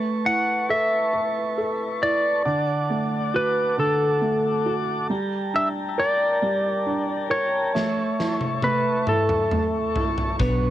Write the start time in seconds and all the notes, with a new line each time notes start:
Already playing: A3 B4 A5 C#6
0.25 E4 F#5
0.69 A4 E5
1.13 B4
1.58 A4
2.01 E4 D5
2.45 D3 F#5 A5 D6
2.90 A3
3.34 F#4 B4
3.78 D3 A4
4.21 A3
4.66 F#4
5.10 G3 G5 A#5
5.54 D4 E5
5.98 A#4 D5
6.42 G3
6.86 D4
7.30 A#4 C#5
7.74 A3 E5 C#6, snare
8.19 E4, snare
8.41 high tom
8.62 A3 B4, high tom
9.07 E4 A4, mid tom
9.29 mid tom
9.51 A3, mid tom
9.96 E4, floor tom
10.18 floor tom
10.39 B1 B2 F#3 B3 D4 F#4 B4 C#5, kick, closed hi-hat